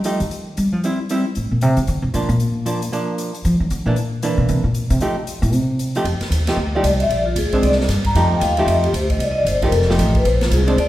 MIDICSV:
0, 0, Header, 1, 6, 480
1, 0, Start_track
1, 0, Tempo, 261894
1, 1516, Time_signature, 4, 2, 24, 8
1, 19950, End_track
2, 0, Start_track
2, 0, Title_t, "Vibraphone"
2, 0, Program_c, 0, 11
2, 12375, Note_on_c, 0, 74, 84
2, 12544, Note_off_c, 0, 74, 0
2, 12578, Note_on_c, 0, 75, 64
2, 12840, Note_off_c, 0, 75, 0
2, 12857, Note_on_c, 0, 76, 92
2, 13007, Note_on_c, 0, 74, 66
2, 13026, Note_off_c, 0, 76, 0
2, 13294, Note_off_c, 0, 74, 0
2, 13299, Note_on_c, 0, 65, 57
2, 13486, Note_off_c, 0, 65, 0
2, 13529, Note_on_c, 0, 68, 75
2, 13796, Note_on_c, 0, 72, 74
2, 13797, Note_off_c, 0, 68, 0
2, 13976, Note_off_c, 0, 72, 0
2, 14003, Note_on_c, 0, 74, 74
2, 14171, Note_off_c, 0, 74, 0
2, 14777, Note_on_c, 0, 82, 94
2, 14949, Note_off_c, 0, 82, 0
2, 14960, Note_on_c, 0, 81, 64
2, 15234, Note_off_c, 0, 81, 0
2, 15257, Note_on_c, 0, 79, 77
2, 15429, Note_off_c, 0, 79, 0
2, 15442, Note_on_c, 0, 77, 84
2, 15716, Note_off_c, 0, 77, 0
2, 15722, Note_on_c, 0, 76, 85
2, 15902, Note_off_c, 0, 76, 0
2, 15928, Note_on_c, 0, 75, 68
2, 16200, Note_off_c, 0, 75, 0
2, 16226, Note_on_c, 0, 67, 57
2, 16395, Note_off_c, 0, 67, 0
2, 16421, Note_on_c, 0, 72, 64
2, 16687, Note_off_c, 0, 72, 0
2, 16688, Note_on_c, 0, 75, 91
2, 16866, Note_off_c, 0, 75, 0
2, 16904, Note_on_c, 0, 74, 59
2, 17041, Note_off_c, 0, 74, 0
2, 17070, Note_on_c, 0, 75, 92
2, 17196, Note_on_c, 0, 74, 75
2, 17205, Note_off_c, 0, 75, 0
2, 17348, Note_off_c, 0, 74, 0
2, 17377, Note_on_c, 0, 72, 74
2, 17646, Note_off_c, 0, 72, 0
2, 17681, Note_on_c, 0, 70, 70
2, 17845, Note_off_c, 0, 70, 0
2, 17858, Note_on_c, 0, 69, 63
2, 18025, Note_off_c, 0, 69, 0
2, 18631, Note_on_c, 0, 71, 79
2, 18801, Note_off_c, 0, 71, 0
2, 18821, Note_on_c, 0, 72, 80
2, 19090, Note_off_c, 0, 72, 0
2, 19124, Note_on_c, 0, 65, 54
2, 19288, Note_off_c, 0, 65, 0
2, 19295, Note_on_c, 0, 68, 70
2, 19567, Note_off_c, 0, 68, 0
2, 19578, Note_on_c, 0, 72, 87
2, 19755, Note_off_c, 0, 72, 0
2, 19765, Note_on_c, 0, 74, 90
2, 19950, Note_off_c, 0, 74, 0
2, 19950, End_track
3, 0, Start_track
3, 0, Title_t, "Hollow-body jazz guitar"
3, 0, Program_c, 1, 26
3, 88, Note_on_c, 1, 53, 52
3, 97, Note_on_c, 1, 63, 60
3, 98, Note_on_c, 1, 57, 54
3, 109, Note_on_c, 1, 67, 55
3, 345, Note_off_c, 1, 53, 0
3, 349, Note_off_c, 1, 63, 0
3, 350, Note_off_c, 1, 57, 0
3, 355, Note_off_c, 1, 67, 0
3, 1543, Note_on_c, 1, 55, 47
3, 1554, Note_on_c, 1, 60, 53
3, 1564, Note_on_c, 1, 64, 54
3, 1791, Note_off_c, 1, 55, 0
3, 1797, Note_off_c, 1, 60, 0
3, 1802, Note_off_c, 1, 64, 0
3, 2025, Note_on_c, 1, 55, 55
3, 2033, Note_on_c, 1, 60, 62
3, 2042, Note_on_c, 1, 64, 64
3, 2271, Note_off_c, 1, 55, 0
3, 2276, Note_off_c, 1, 60, 0
3, 2280, Note_off_c, 1, 64, 0
3, 3918, Note_on_c, 1, 53, 48
3, 3933, Note_on_c, 1, 58, 51
3, 3947, Note_on_c, 1, 62, 54
3, 4175, Note_off_c, 1, 53, 0
3, 4183, Note_off_c, 1, 58, 0
3, 4190, Note_off_c, 1, 62, 0
3, 4872, Note_on_c, 1, 53, 54
3, 4884, Note_on_c, 1, 58, 57
3, 4892, Note_on_c, 1, 62, 54
3, 5131, Note_off_c, 1, 53, 0
3, 5136, Note_off_c, 1, 58, 0
3, 5141, Note_off_c, 1, 62, 0
3, 5360, Note_on_c, 1, 53, 53
3, 5362, Note_on_c, 1, 58, 60
3, 5377, Note_on_c, 1, 62, 67
3, 6063, Note_off_c, 1, 53, 0
3, 6064, Note_off_c, 1, 58, 0
3, 6072, Note_off_c, 1, 62, 0
3, 7081, Note_on_c, 1, 52, 60
3, 7089, Note_on_c, 1, 58, 60
3, 7102, Note_on_c, 1, 62, 66
3, 7245, Note_off_c, 1, 52, 0
3, 7249, Note_off_c, 1, 58, 0
3, 7256, Note_off_c, 1, 62, 0
3, 7752, Note_on_c, 1, 52, 62
3, 7755, Note_on_c, 1, 58, 57
3, 7774, Note_on_c, 1, 62, 62
3, 8456, Note_off_c, 1, 52, 0
3, 8457, Note_off_c, 1, 58, 0
3, 8467, Note_off_c, 1, 62, 0
3, 9185, Note_on_c, 1, 53, 50
3, 9198, Note_on_c, 1, 57, 59
3, 9198, Note_on_c, 1, 63, 55
3, 9212, Note_on_c, 1, 67, 57
3, 9441, Note_off_c, 1, 53, 0
3, 9447, Note_off_c, 1, 57, 0
3, 9447, Note_off_c, 1, 63, 0
3, 9454, Note_off_c, 1, 67, 0
3, 10920, Note_on_c, 1, 53, 61
3, 10930, Note_on_c, 1, 63, 61
3, 10936, Note_on_c, 1, 57, 66
3, 10938, Note_on_c, 1, 67, 70
3, 11081, Note_off_c, 1, 53, 0
3, 11087, Note_off_c, 1, 63, 0
3, 11090, Note_off_c, 1, 57, 0
3, 11090, Note_off_c, 1, 67, 0
3, 11877, Note_on_c, 1, 53, 55
3, 11880, Note_on_c, 1, 57, 57
3, 11883, Note_on_c, 1, 63, 59
3, 11893, Note_on_c, 1, 67, 59
3, 12040, Note_off_c, 1, 53, 0
3, 12042, Note_off_c, 1, 57, 0
3, 12044, Note_off_c, 1, 63, 0
3, 12049, Note_off_c, 1, 67, 0
3, 12379, Note_on_c, 1, 53, 64
3, 12387, Note_on_c, 1, 57, 66
3, 12393, Note_on_c, 1, 63, 62
3, 12401, Note_on_c, 1, 67, 67
3, 12532, Note_off_c, 1, 53, 0
3, 12536, Note_off_c, 1, 57, 0
3, 12539, Note_off_c, 1, 63, 0
3, 12544, Note_off_c, 1, 67, 0
3, 13806, Note_on_c, 1, 56, 68
3, 13813, Note_on_c, 1, 60, 64
3, 13814, Note_on_c, 1, 62, 65
3, 14430, Note_off_c, 1, 56, 0
3, 14434, Note_off_c, 1, 60, 0
3, 14435, Note_off_c, 1, 62, 0
3, 14950, Note_on_c, 1, 53, 59
3, 14964, Note_on_c, 1, 57, 62
3, 14964, Note_on_c, 1, 63, 67
3, 14965, Note_on_c, 1, 67, 66
3, 15661, Note_off_c, 1, 53, 0
3, 15668, Note_off_c, 1, 57, 0
3, 15668, Note_off_c, 1, 63, 0
3, 15668, Note_off_c, 1, 67, 0
3, 15735, Note_on_c, 1, 53, 64
3, 15745, Note_on_c, 1, 63, 64
3, 15748, Note_on_c, 1, 57, 58
3, 15749, Note_on_c, 1, 67, 73
3, 16357, Note_off_c, 1, 53, 0
3, 16363, Note_off_c, 1, 63, 0
3, 16364, Note_off_c, 1, 57, 0
3, 16364, Note_off_c, 1, 67, 0
3, 17639, Note_on_c, 1, 53, 59
3, 17642, Note_on_c, 1, 57, 53
3, 17645, Note_on_c, 1, 63, 60
3, 17665, Note_on_c, 1, 67, 60
3, 17810, Note_off_c, 1, 53, 0
3, 17811, Note_off_c, 1, 57, 0
3, 17813, Note_off_c, 1, 63, 0
3, 17823, Note_off_c, 1, 67, 0
3, 18139, Note_on_c, 1, 53, 60
3, 18144, Note_on_c, 1, 57, 65
3, 18151, Note_on_c, 1, 63, 58
3, 18155, Note_on_c, 1, 67, 58
3, 18763, Note_off_c, 1, 53, 0
3, 18765, Note_off_c, 1, 57, 0
3, 18768, Note_off_c, 1, 63, 0
3, 18771, Note_off_c, 1, 67, 0
3, 19559, Note_on_c, 1, 56, 61
3, 19566, Note_on_c, 1, 60, 57
3, 19574, Note_on_c, 1, 62, 74
3, 19732, Note_off_c, 1, 56, 0
3, 19735, Note_off_c, 1, 60, 0
3, 19739, Note_off_c, 1, 62, 0
3, 19950, End_track
4, 0, Start_track
4, 0, Title_t, "Upright bass"
4, 0, Program_c, 2, 32
4, 0, Note_on_c, 2, 55, 88
4, 327, Note_off_c, 2, 55, 0
4, 367, Note_on_c, 2, 51, 72
4, 989, Note_off_c, 2, 51, 0
4, 1056, Note_on_c, 2, 55, 86
4, 1326, Note_off_c, 2, 55, 0
4, 1326, Note_on_c, 2, 53, 95
4, 1439, Note_off_c, 2, 53, 0
4, 2505, Note_on_c, 2, 45, 69
4, 2763, Note_off_c, 2, 45, 0
4, 2774, Note_on_c, 2, 46, 76
4, 2976, Note_off_c, 2, 46, 0
4, 2976, Note_on_c, 2, 48, 78
4, 3234, Note_off_c, 2, 48, 0
4, 3245, Note_on_c, 2, 49, 88
4, 3426, Note_off_c, 2, 49, 0
4, 3445, Note_on_c, 2, 50, 88
4, 3697, Note_off_c, 2, 50, 0
4, 3708, Note_on_c, 2, 48, 91
4, 3897, Note_off_c, 2, 48, 0
4, 3919, Note_on_c, 2, 46, 81
4, 4180, Note_off_c, 2, 46, 0
4, 4191, Note_on_c, 2, 46, 97
4, 5267, Note_off_c, 2, 46, 0
4, 6318, Note_on_c, 2, 53, 89
4, 6592, Note_off_c, 2, 53, 0
4, 6603, Note_on_c, 2, 51, 86
4, 6780, Note_off_c, 2, 51, 0
4, 6795, Note_on_c, 2, 50, 81
4, 7057, Note_off_c, 2, 50, 0
4, 7068, Note_on_c, 2, 46, 80
4, 7689, Note_off_c, 2, 46, 0
4, 8020, Note_on_c, 2, 47, 91
4, 8206, Note_off_c, 2, 47, 0
4, 8227, Note_on_c, 2, 48, 99
4, 8488, Note_off_c, 2, 48, 0
4, 8499, Note_on_c, 2, 46, 83
4, 8948, Note_off_c, 2, 46, 0
4, 8986, Note_on_c, 2, 48, 94
4, 9099, Note_off_c, 2, 48, 0
4, 9934, Note_on_c, 2, 45, 95
4, 10148, Note_off_c, 2, 45, 0
4, 10148, Note_on_c, 2, 48, 80
4, 10911, Note_off_c, 2, 48, 0
4, 11077, Note_on_c, 2, 41, 69
4, 11355, Note_off_c, 2, 41, 0
4, 11551, Note_on_c, 2, 39, 86
4, 12018, Note_off_c, 2, 39, 0
4, 12029, Note_on_c, 2, 38, 78
4, 12502, Note_off_c, 2, 38, 0
4, 12513, Note_on_c, 2, 36, 79
4, 12990, Note_off_c, 2, 36, 0
4, 12999, Note_on_c, 2, 34, 66
4, 13474, Note_off_c, 2, 34, 0
4, 13485, Note_on_c, 2, 38, 89
4, 13762, Note_off_c, 2, 38, 0
4, 13970, Note_on_c, 2, 36, 81
4, 14432, Note_off_c, 2, 36, 0
4, 14443, Note_on_c, 2, 43, 80
4, 14918, Note_off_c, 2, 43, 0
4, 14929, Note_on_c, 2, 41, 79
4, 15388, Note_off_c, 2, 41, 0
4, 15399, Note_on_c, 2, 39, 91
4, 15864, Note_off_c, 2, 39, 0
4, 15875, Note_on_c, 2, 41, 87
4, 16346, Note_off_c, 2, 41, 0
4, 16357, Note_on_c, 2, 38, 85
4, 16829, Note_off_c, 2, 38, 0
4, 16840, Note_on_c, 2, 36, 76
4, 17304, Note_off_c, 2, 36, 0
4, 17315, Note_on_c, 2, 31, 86
4, 17788, Note_off_c, 2, 31, 0
4, 17799, Note_on_c, 2, 29, 83
4, 18280, Note_off_c, 2, 29, 0
4, 18291, Note_on_c, 2, 33, 84
4, 18767, Note_off_c, 2, 33, 0
4, 18782, Note_on_c, 2, 34, 76
4, 19245, Note_off_c, 2, 34, 0
4, 19256, Note_on_c, 2, 36, 87
4, 19715, Note_off_c, 2, 36, 0
4, 19726, Note_on_c, 2, 38, 79
4, 19950, Note_off_c, 2, 38, 0
4, 19950, End_track
5, 0, Start_track
5, 0, Title_t, "Muted upright bass strokes"
5, 11374, Note_on_c, 9, 29, 37
5, 11558, Note_off_c, 9, 29, 0
5, 13790, Note_on_c, 9, 29, 41
5, 13973, Note_off_c, 9, 29, 0
5, 19950, End_track
6, 0, Start_track
6, 0, Title_t, "Drums"
6, 72, Note_on_c, 9, 42, 54
6, 255, Note_off_c, 9, 42, 0
6, 368, Note_on_c, 9, 42, 41
6, 552, Note_off_c, 9, 42, 0
6, 568, Note_on_c, 9, 42, 41
6, 751, Note_off_c, 9, 42, 0
6, 1045, Note_on_c, 9, 42, 50
6, 1229, Note_off_c, 9, 42, 0
6, 1532, Note_on_c, 9, 42, 40
6, 1715, Note_off_c, 9, 42, 0
6, 2004, Note_on_c, 9, 42, 50
6, 2188, Note_off_c, 9, 42, 0
6, 2478, Note_on_c, 9, 42, 43
6, 2661, Note_off_c, 9, 42, 0
6, 2956, Note_on_c, 9, 42, 52
6, 3139, Note_off_c, 9, 42, 0
6, 3236, Note_on_c, 9, 42, 41
6, 3420, Note_off_c, 9, 42, 0
6, 3431, Note_on_c, 9, 42, 41
6, 3614, Note_off_c, 9, 42, 0
6, 3919, Note_on_c, 9, 42, 48
6, 4103, Note_off_c, 9, 42, 0
6, 4203, Note_on_c, 9, 42, 37
6, 4386, Note_off_c, 9, 42, 0
6, 4392, Note_on_c, 9, 42, 43
6, 4576, Note_off_c, 9, 42, 0
6, 4876, Note_on_c, 9, 42, 54
6, 5059, Note_off_c, 9, 42, 0
6, 5171, Note_on_c, 9, 42, 47
6, 5354, Note_off_c, 9, 42, 0
6, 5367, Note_on_c, 9, 42, 41
6, 5550, Note_off_c, 9, 42, 0
6, 5831, Note_on_c, 9, 42, 53
6, 6014, Note_off_c, 9, 42, 0
6, 6128, Note_on_c, 9, 42, 39
6, 6312, Note_off_c, 9, 42, 0
6, 6318, Note_on_c, 9, 42, 47
6, 6501, Note_off_c, 9, 42, 0
6, 6788, Note_on_c, 9, 42, 51
6, 6971, Note_off_c, 9, 42, 0
6, 7260, Note_on_c, 9, 42, 45
6, 7444, Note_off_c, 9, 42, 0
6, 7742, Note_on_c, 9, 42, 57
6, 7925, Note_off_c, 9, 42, 0
6, 8221, Note_on_c, 9, 42, 47
6, 8404, Note_off_c, 9, 42, 0
6, 8695, Note_on_c, 9, 42, 53
6, 8879, Note_off_c, 9, 42, 0
6, 8985, Note_on_c, 9, 42, 47
6, 9168, Note_off_c, 9, 42, 0
6, 9172, Note_on_c, 9, 42, 41
6, 9356, Note_off_c, 9, 42, 0
6, 9659, Note_on_c, 9, 42, 57
6, 9843, Note_off_c, 9, 42, 0
6, 9947, Note_on_c, 9, 42, 39
6, 10130, Note_off_c, 9, 42, 0
6, 10130, Note_on_c, 9, 42, 48
6, 10313, Note_off_c, 9, 42, 0
6, 10616, Note_on_c, 9, 42, 51
6, 10799, Note_off_c, 9, 42, 0
6, 10906, Note_on_c, 9, 42, 47
6, 11089, Note_off_c, 9, 42, 0
6, 11092, Note_on_c, 9, 51, 55
6, 11275, Note_off_c, 9, 51, 0
6, 11375, Note_on_c, 9, 51, 43
6, 11380, Note_on_c, 9, 38, 31
6, 11558, Note_off_c, 9, 51, 0
6, 11564, Note_off_c, 9, 38, 0
6, 11577, Note_on_c, 9, 44, 55
6, 11577, Note_on_c, 9, 51, 69
6, 11760, Note_off_c, 9, 44, 0
6, 11760, Note_off_c, 9, 51, 0
6, 11859, Note_on_c, 9, 51, 55
6, 11865, Note_on_c, 9, 38, 41
6, 12043, Note_off_c, 9, 51, 0
6, 12048, Note_off_c, 9, 38, 0
6, 12532, Note_on_c, 9, 44, 56
6, 12532, Note_on_c, 9, 51, 72
6, 12715, Note_off_c, 9, 44, 0
6, 12715, Note_off_c, 9, 51, 0
6, 12828, Note_on_c, 9, 51, 43
6, 13011, Note_off_c, 9, 51, 0
6, 13019, Note_on_c, 9, 51, 52
6, 13203, Note_off_c, 9, 51, 0
6, 13488, Note_on_c, 9, 44, 57
6, 13488, Note_on_c, 9, 51, 74
6, 13672, Note_off_c, 9, 44, 0
6, 13672, Note_off_c, 9, 51, 0
6, 13790, Note_on_c, 9, 51, 41
6, 13797, Note_on_c, 9, 36, 48
6, 13973, Note_off_c, 9, 51, 0
6, 13981, Note_off_c, 9, 36, 0
6, 13983, Note_on_c, 9, 51, 63
6, 14149, Note_on_c, 9, 38, 30
6, 14166, Note_off_c, 9, 51, 0
6, 14308, Note_off_c, 9, 38, 0
6, 14308, Note_on_c, 9, 38, 39
6, 14452, Note_on_c, 9, 44, 58
6, 14452, Note_on_c, 9, 51, 68
6, 14458, Note_off_c, 9, 38, 0
6, 14458, Note_on_c, 9, 38, 35
6, 14635, Note_off_c, 9, 44, 0
6, 14635, Note_off_c, 9, 51, 0
6, 14641, Note_off_c, 9, 38, 0
6, 14743, Note_on_c, 9, 51, 48
6, 14753, Note_on_c, 9, 36, 52
6, 14927, Note_off_c, 9, 51, 0
6, 14936, Note_off_c, 9, 36, 0
6, 14942, Note_on_c, 9, 51, 62
6, 15126, Note_off_c, 9, 51, 0
6, 15417, Note_on_c, 9, 44, 62
6, 15417, Note_on_c, 9, 51, 70
6, 15601, Note_off_c, 9, 44, 0
6, 15601, Note_off_c, 9, 51, 0
6, 15706, Note_on_c, 9, 51, 43
6, 15889, Note_off_c, 9, 51, 0
6, 15903, Note_on_c, 9, 51, 66
6, 16086, Note_off_c, 9, 51, 0
6, 16193, Note_on_c, 9, 51, 42
6, 16376, Note_off_c, 9, 51, 0
6, 16384, Note_on_c, 9, 44, 55
6, 16384, Note_on_c, 9, 51, 63
6, 16567, Note_off_c, 9, 44, 0
6, 16567, Note_off_c, 9, 51, 0
6, 16673, Note_on_c, 9, 51, 46
6, 16674, Note_on_c, 9, 36, 45
6, 16856, Note_off_c, 9, 51, 0
6, 16857, Note_off_c, 9, 36, 0
6, 16863, Note_on_c, 9, 51, 60
6, 17047, Note_off_c, 9, 51, 0
6, 17347, Note_on_c, 9, 44, 61
6, 17347, Note_on_c, 9, 51, 67
6, 17530, Note_off_c, 9, 44, 0
6, 17530, Note_off_c, 9, 51, 0
6, 17634, Note_on_c, 9, 51, 44
6, 17637, Note_on_c, 9, 36, 45
6, 17815, Note_off_c, 9, 51, 0
6, 17815, Note_on_c, 9, 51, 61
6, 17820, Note_off_c, 9, 36, 0
6, 17993, Note_on_c, 9, 38, 26
6, 17999, Note_off_c, 9, 51, 0
6, 18145, Note_off_c, 9, 38, 0
6, 18145, Note_on_c, 9, 38, 39
6, 18306, Note_on_c, 9, 44, 51
6, 18306, Note_on_c, 9, 51, 65
6, 18328, Note_off_c, 9, 38, 0
6, 18489, Note_off_c, 9, 44, 0
6, 18489, Note_off_c, 9, 51, 0
6, 18597, Note_on_c, 9, 51, 42
6, 18603, Note_on_c, 9, 36, 63
6, 18780, Note_off_c, 9, 51, 0
6, 18786, Note_off_c, 9, 36, 0
6, 18788, Note_on_c, 9, 51, 56
6, 18971, Note_off_c, 9, 51, 0
6, 19081, Note_on_c, 9, 51, 46
6, 19087, Note_on_c, 9, 38, 55
6, 19264, Note_off_c, 9, 51, 0
6, 19270, Note_off_c, 9, 38, 0
6, 19270, Note_on_c, 9, 44, 58
6, 19270, Note_on_c, 9, 51, 62
6, 19453, Note_off_c, 9, 44, 0
6, 19453, Note_off_c, 9, 51, 0
6, 19566, Note_on_c, 9, 51, 43
6, 19749, Note_off_c, 9, 51, 0
6, 19758, Note_on_c, 9, 51, 57
6, 19942, Note_off_c, 9, 51, 0
6, 19950, End_track
0, 0, End_of_file